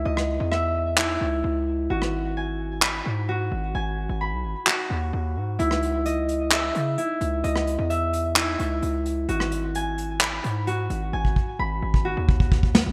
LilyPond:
<<
  \new Staff \with { instrumentName = "Harp" } { \time 4/4 \key cis \minor \tempo 4 = 130 <e' dis'' e''>4 e''4 e'2 | fis'4 gis''4 b''4 fis'4 | gis''4 b''4 fis'2 | e'4 dis''4 e''4 e'4 |
dis''4 e''4 e'2 | fis'4 gis''4 b''4 fis'4 | gis''4 b''4 fis'2 | }
  \new Staff \with { instrumentName = "808-style bass" } { \clef bass \time 4/4 \key cis \minor cis,8. e,4.~ e,16 cis,8 cis,4 | gis,,2~ gis,,8 gis,4 gis,,8 | gis,,8. gis,,8 b,,16 gis,,16 r8. dis,8 dis,8 gis,8 | cis,2~ cis,8 cis8 r8 cis,8 |
cis,8. e,4.~ e,16 cis,8 cis,4 | gis,,2~ gis,,8 gis,4 gis,,8 | gis,,8 r8 gis,,8 gis,,8. dis,4. gis,,16 | }
  \new DrumStaff \with { instrumentName = "Drums" } \drummode { \time 4/4 r16 ss8. ss4 hc4 r4 | r16 ss8. r4 hc4 r4 | r4 r4 hc4 r4 | hh16 ss16 hh8 hh8 hh8 <hc hh>8 hh8 hh8 hh8 |
hh16 ss16 hh8 hh8 hh8 <hc hh>8 hh8 hh8 hh8 | hh16 ss16 hh8 hh8 hh8 <hc hh>8 hh8 hh8 hh8 | r16 bd16 bd8 r8. bd16 r8 bd16 bd16 bd16 bd16 sn8 | }
>>